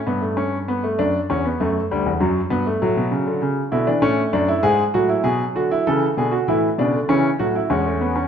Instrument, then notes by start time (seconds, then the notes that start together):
grand piano
0.07 G2 B3
0.21 A3
0.37 C#4
0.68 B3
0.84 A3
0.99 F#2 D4
1.30 E2 C#4
1.45 B3
1.60 F#2 A3
1.91 D2 G3
2.06 E2
2.20 F#2 F#3
2.50 G2 B3
2.67 A3
2.82 A2 F#3
2.97 B2
3.11 C#3
3.27 D3
3.42 C#3
3.72 B2 D3 E4
3.87 E3 D4
4.02 A2 A3 C#4
4.33 F#2 D4
4.48 E4
4.63 G#2 G#3 G#4
4.94 A2 F#3 F#4
5.09 E4
5.24 B2 G#4
5.55 D3 F#4
5.71 E4
5.87 C#3 E3 A4
6.17 B2 D3 G#4
6.32 F#4
6.48 A2 E3 E4
6.78 B2 C#3 D4
6.93 D3
7.09 C#3 E3 C#4
7.39 A2 F#3 F#4
7.56 E4
7.70 E2 G#3 C#4
7.85 A3
8.01 B3
8.16 C#4